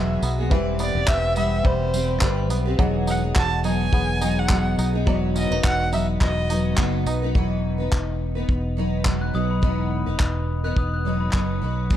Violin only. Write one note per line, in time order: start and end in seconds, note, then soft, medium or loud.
0.00 0.24 E5 medium
0.81 1.10 D5 medium
1.09 1.37 E5 loud
1.38 1.68 E5 loud
1.66 2.51 C5 medium
3.10 3.23 F#5 medium
3.38 3.64 A5 loud
3.66 4.40 G#5 loud
4.39 4.79 F#5 medium
5.37 5.63 D#5 medium
5.65 5.91 F#5 loud
5.94 6.06 E5 medium
6.23 6.75 D#5 medium
11.93 11.97 C#5 medium